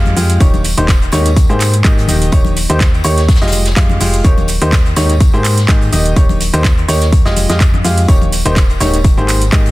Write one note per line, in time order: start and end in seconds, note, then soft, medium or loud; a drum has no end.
0.00 0.14 F2 loud
0.00 0.13 G#3 medium
0.00 0.13 F4 medium
0.00 0.13 G4 medium
0.00 0.13 F5 loud
0.05 closed hi-hat soft
0.05 tambourine soft
0.05 high conga medium
0.05 shaker soft
0.16 0.38 F2 loud
0.16 0.38 G#3 medium
0.16 0.38 F4 medium
0.16 0.38 G4 medium
0.16 0.38 F5 medium
0.16 open hi-hat loud
0.16 tambourine medium
0.16 shaker medium
0.30 closed hi-hat medium
0.30 tambourine soft
0.30 shaker soft
0.40 0.75 D#1 loud
0.40 0.63 D#3 medium
0.40 0.63 A#3 medium
0.40 0.63 D#4 medium
0.40 0.63 G4 medium
0.40 0.63 C#5 medium
0.40 kick loud
0.40 closed hi-hat medium
0.40 tambourine medium
0.40 shaker soft
0.54 tambourine soft
0.54 high conga medium
0.54 shaker soft
0.64 closed hi-hat medium
0.64 open hi-hat loud
0.64 tambourine medium
0.64 shaker medium
0.77 1.10 D#1 loud
0.77 0.91 D#3 loud
0.77 0.91 A#3 medium
0.77 0.91 D#4 medium
0.77 0.91 G4 medium
0.77 0.91 C5 loud
0.77 closed hi-hat soft
0.77 closed hi-hat medium
0.77 tambourine soft
0.77 shaker soft
0.88 kick loud
0.88 snare loud
0.88 clap loud
0.88 closed hi-hat medium
0.88 tambourine medium
0.88 shaker soft
1.01 closed hi-hat soft
1.01 tambourine soft
1.01 shaker soft
1.12 1.47 D#2 loud
1.12 1.28 G#2 medium
1.12 1.28 A#3 medium
1.12 1.28 D#4 medium
1.12 1.28 G4 medium
1.12 1.28 C#5 loud
1.12 snare soft
1.12 closed hi-hat medium
1.12 open hi-hat loud
1.12 tambourine loud
1.12 shaker medium
1.25 closed hi-hat medium
1.25 tambourine soft
1.25 shaker soft
1.36 kick loud
1.36 closed hi-hat medium
1.36 tambourine medium
1.36 shaker soft
1.49 1.72 G#2 medium
1.49 1.82 G#2 loud
1.49 1.72 A#3 medium
1.49 1.72 G4 medium
1.49 1.72 G#4 medium
1.49 1.72 C5 medium
1.49 tambourine soft
1.49 shaker soft
1.60 clap medium
1.60 closed hi-hat medium
1.60 open hi-hat loud
1.60 tambourine loud
1.60 shaker medium
1.73 closed hi-hat medium
1.73 tambourine soft
1.73 shaker soft
1.84 2.06 G#2 loud
1.84 2.05 D#3 medium
1.84 2.05 A#3 medium
1.84 2.05 G4 medium
1.84 2.05 G#4 medium
1.84 2.05 D#5 loud
1.84 kick loud
1.84 clap loud
1.84 closed hi-hat medium
1.84 tambourine medium
1.84 shaker soft
1.97 closed hi-hat medium
1.97 tambourine soft
1.97 shaker soft
2.08 2.30 D#1 loud
2.08 2.30 D#3 medium
2.08 2.30 A#3 medium
2.08 2.30 D#4 medium
2.08 2.30 G4 medium
2.08 2.30 D#5 medium
2.08 open hi-hat loud
2.08 tambourine medium
2.08 high conga medium
2.08 shaker medium
2.22 closed hi-hat medium
2.22 tambourine soft
2.22 shaker soft
2.32 2.67 D#1 loud
2.32 2.55 D#3 medium
2.32 2.55 A#3 medium
2.32 2.55 D#4 medium
2.32 2.55 G4 medium
2.32 2.55 C#5 medium
2.32 kick loud
2.32 closed hi-hat medium
2.32 closed hi-hat loud
2.32 tambourine medium
2.32 shaker soft
2.44 closed hi-hat soft
2.44 tambourine soft
2.44 high conga loud
2.44 shaker soft
2.56 closed hi-hat medium
2.56 open hi-hat loud
2.56 tambourine medium
2.56 shaker medium
2.69 3.02 D#2 loud
2.69 2.83 D#3 loud
2.69 2.83 A#3 medium
2.69 2.83 D#4 medium
2.69 2.83 G4 loud
2.69 2.83 C5 loud
2.69 closed hi-hat medium
2.69 tambourine soft
2.69 shaker soft
2.80 kick loud
2.80 snare loud
2.80 clap loud
2.80 closed hi-hat medium
2.80 tambourine soft
2.80 shaker soft
2.94 closed hi-hat soft
2.94 tambourine soft
2.94 shaker soft
3.04 3.39 D#2 loud
3.04 3.19 A#3 loud
3.04 3.19 D#4 medium
3.04 3.19 G4 medium
3.04 3.20 C#5 loud
3.04 closed hi-hat medium
3.04 open hi-hat loud
3.04 tambourine loud
3.04 shaker medium
3.17 snare medium
3.17 closed hi-hat medium
3.17 tambourine soft
3.17 shaker soft
3.28 kick loud
3.28 snare medium
3.28 closed hi-hat medium
3.28 tambourine medium
3.28 shaker soft
3.34 snare medium
3.34 closed hi-hat medium
3.41 3.74 F1 loud
3.41 3.64 G#3 medium
3.41 3.64 F4 medium
3.41 3.64 G4 medium
3.41 3.64 D#5 medium
3.41 snare medium
3.41 closed hi-hat medium
3.41 tambourine soft
3.41 shaker soft
3.47 snare medium
3.47 closed hi-hat medium
3.52 closed hi-hat medium
3.52 open hi-hat loud
3.52 tambourine loud
3.52 high conga medium
3.52 shaker medium
3.65 snare medium
3.65 closed hi-hat medium
3.65 tambourine soft
3.65 shaker soft
3.76 3.98 F2 loud
3.76 3.97 G#3 medium
3.76 3.97 F4 medium
3.76 3.97 G4 medium
3.76 3.97 F5 loud
3.76 kick loud
3.76 snare loud
3.76 clap loud
3.76 closed hi-hat loud
3.76 closed hi-hat medium
3.76 tambourine medium
3.76 shaker soft
3.90 tambourine soft
3.90 high conga medium
3.90 shaker soft
4.00 4.22 F1 loud
4.00 4.22 G#3 medium
4.00 4.22 F4 medium
4.00 4.22 G4 medium
4.00 4.22 F5 medium
4.00 open hi-hat medium
4.00 open hi-hat loud
4.00 tambourine loud
4.00 shaker medium
4.14 closed hi-hat medium
4.14 tambourine soft
4.14 shaker soft
4.24 4.59 D#1 loud
4.24 4.47 D#3 medium
4.24 4.47 A#3 medium
4.24 4.47 D#4 medium
4.24 4.47 G4 medium
4.24 4.47 C#5 medium
4.24 kick loud
4.24 closed hi-hat medium
4.24 tambourine medium
4.24 shaker soft
4.38 tambourine soft
4.38 high conga loud
4.38 shaker soft
4.48 closed hi-hat medium
4.48 open hi-hat loud
4.48 tambourine loud
4.48 shaker medium
4.61 4.94 D#2 loud
4.61 4.75 D#3 loud
4.61 4.75 A#3 medium
4.61 4.75 D#4 medium
4.61 4.75 G4 medium
4.61 4.75 C5 loud
4.61 closed hi-hat soft
4.61 closed hi-hat medium
4.61 tambourine soft
4.61 shaker soft
4.72 kick loud
4.72 snare loud
4.72 clap loud
4.72 closed hi-hat medium
4.72 tambourine medium
4.72 shaker soft
4.85 closed hi-hat soft
4.85 tambourine soft
4.85 shaker soft
4.96 5.31 D#2 loud
4.96 5.12 G#2 loud
4.96 5.12 A#3 medium
4.96 5.12 D#4 medium
4.96 5.12 G4 medium
4.96 5.12 C#5 loud
4.96 snare soft
4.96 closed hi-hat medium
4.96 open hi-hat loud
4.96 tambourine loud
4.96 shaker medium
5.09 closed hi-hat medium
5.09 tambourine soft
5.09 shaker soft
5.20 kick loud
5.20 closed hi-hat medium
5.20 tambourine medium
5.20 shaker soft
5.34 5.56 G#2 medium
5.34 5.66 G#2 loud
5.34 5.56 A#3 medium
5.34 5.56 G4 medium
5.34 5.56 G#4 medium
5.34 5.56 C5 medium
5.34 tambourine soft
5.34 shaker soft
5.45 clap medium
5.45 closed hi-hat medium
5.45 open hi-hat loud
5.45 tambourine loud
5.45 shaker medium
5.57 snare soft
5.57 closed hi-hat medium
5.57 tambourine soft
5.57 shaker soft
5.68 5.90 G#2 loud
5.68 5.89 D#3 medium
5.68 5.89 A#3 medium
5.68 5.89 G4 medium
5.68 5.89 G#4 medium
5.68 5.89 D#5 loud
5.68 kick loud
5.68 snare loud
5.68 clap loud
5.68 closed hi-hat loud
5.68 closed hi-hat medium
5.68 tambourine medium
5.68 shaker soft
5.81 closed hi-hat soft
5.81 tambourine soft
5.81 shaker soft
5.92 6.14 D#1 loud
5.92 6.14 D#3 medium
5.92 6.14 A#3 medium
5.92 6.14 D#4 medium
5.92 6.14 G4 medium
5.92 6.14 D#5 medium
5.92 closed hi-hat medium
5.92 open hi-hat loud
5.92 tambourine loud
5.92 high conga medium
5.92 shaker medium
6.05 closed hi-hat medium
6.05 tambourine soft
6.05 shaker soft
6.16 6.51 D#1 loud
6.16 6.39 D#3 medium
6.16 6.39 A#3 medium
6.16 6.39 D#4 medium
6.16 6.39 G4 medium
6.16 6.39 C#5 medium
6.16 kick loud
6.16 closed hi-hat medium
6.16 tambourine medium
6.16 shaker soft
6.29 closed hi-hat soft
6.29 tambourine soft
6.29 high conga loud
6.29 shaker soft
6.41 closed hi-hat medium
6.41 open hi-hat loud
6.41 tambourine medium
6.41 shaker medium
6.53 6.86 D#2 loud
6.53 6.67 D#3 loud
6.53 6.67 A#3 medium
6.53 6.67 D#4 medium
6.53 6.67 G4 medium
6.53 6.67 C5 loud
6.53 closed hi-hat medium
6.53 tambourine soft
6.53 shaker soft
6.64 kick loud
6.64 snare loud
6.64 clap loud
6.64 closed hi-hat medium
6.64 tambourine medium
6.64 shaker soft
6.77 closed hi-hat soft
6.77 tambourine soft
6.77 shaker soft
6.88 7.23 D#2 loud
6.88 7.03 A#3 loud
6.88 7.03 D#4 medium
6.88 7.03 G4 medium
6.88 7.03 C#5 loud
6.88 closed hi-hat medium
6.88 open hi-hat loud
6.88 tambourine loud
6.88 shaker medium
7.01 snare soft
7.01 closed hi-hat medium
7.01 tambourine soft
7.01 shaker soft
7.12 kick loud
7.12 closed hi-hat medium
7.12 tambourine medium
7.12 shaker soft
7.25 7.47 F1 loud
7.25 7.47 G#3 medium
7.25 7.47 F4 medium
7.25 7.47 G4 medium
7.25 7.47 D#5 medium
7.25 snare medium
7.25 tambourine soft
7.25 shaker soft
7.36 closed hi-hat medium
7.36 open hi-hat loud
7.36 tambourine medium
7.36 high conga medium
7.36 shaker medium
7.49 7.82 F2 loud
7.49 7.63 G#3 medium
7.49 7.63 F4 medium
7.49 7.63 G4 medium
7.49 7.63 D#5 medium
7.49 snare medium
7.49 closed hi-hat medium
7.49 tambourine soft
7.49 shaker soft
7.60 kick loud
7.60 snare loud
7.60 clap loud
7.60 closed hi-hat medium
7.60 tambourine medium
7.60 shaker soft
7.74 tambourine soft
7.74 high conga medium
7.74 shaker soft
7.84 8.06 F2 loud
7.84 8.05 G#3 medium
7.84 8.05 F4 medium
7.84 8.05 G4 medium
7.84 8.05 F5 medium
7.84 open hi-hat medium
7.84 open hi-hat loud
7.84 tambourine medium
7.84 shaker medium
7.97 closed hi-hat medium
7.97 tambourine soft
7.97 shaker soft
8.08 8.43 D#1 loud
8.08 8.31 D#3 medium
8.08 8.31 A#3 medium
8.08 8.31 D#4 medium
8.08 8.31 G4 medium
8.08 8.31 C#5 medium
8.08 kick loud
8.08 closed hi-hat medium
8.08 tambourine medium
8.08 shaker soft
8.22 tambourine soft
8.22 high conga medium
8.22 shaker soft
8.32 closed hi-hat medium
8.32 open hi-hat loud
8.32 tambourine loud
8.32 shaker medium
8.45 8.78 D#1 loud
8.45 8.59 D#3 loud
8.45 8.59 A#3 medium
8.45 8.59 D#4 loud
8.45 8.59 G4 medium
8.45 8.59 C5 loud
8.45 closed hi-hat medium
8.45 closed hi-hat soft
8.45 tambourine soft
8.45 shaker soft
8.56 kick loud
8.56 snare loud
8.56 clap loud
8.56 closed hi-hat medium
8.56 tambourine medium
8.56 shaker soft
8.69 closed hi-hat soft
8.69 tambourine soft
8.69 shaker soft
8.80 9.15 D#1 loud
8.80 8.96 G#2 loud
8.80 8.96 A#3 medium
8.80 8.96 D#4 medium
8.80 8.96 G4 medium
8.80 8.96 C#5 loud
8.80 snare soft
8.80 closed hi-hat medium
8.80 open hi-hat loud
8.80 tambourine loud
8.80 shaker medium
8.94 closed hi-hat medium
8.94 tambourine soft
8.94 shaker soft
9.04 kick loud
9.04 closed hi-hat medium
9.04 tambourine soft
9.04 shaker soft
9.17 9.50 G#1 loud
9.17 9.40 G#2 medium
9.17 9.40 A#3 medium
9.17 9.40 G4 medium
9.17 9.40 G#4 medium
9.17 9.40 C5 medium
9.17 tambourine soft
9.17 shaker soft
9.29 clap medium
9.29 closed hi-hat medium
9.29 open hi-hat loud
9.29 tambourine loud
9.29 shaker medium
9.41 closed hi-hat medium
9.41 tambourine soft
9.41 shaker soft
9.52 9.71 G#2 loud
9.52 9.71 D#3 medium
9.52 9.71 A#3 medium
9.52 9.71 G4 medium
9.52 9.71 G#4 medium
9.52 9.71 D#5 loud
9.52 kick loud
9.52 clap loud
9.52 closed hi-hat medium
9.52 tambourine medium
9.52 shaker soft
9.66 closed hi-hat medium
9.66 tambourine soft
9.66 shaker soft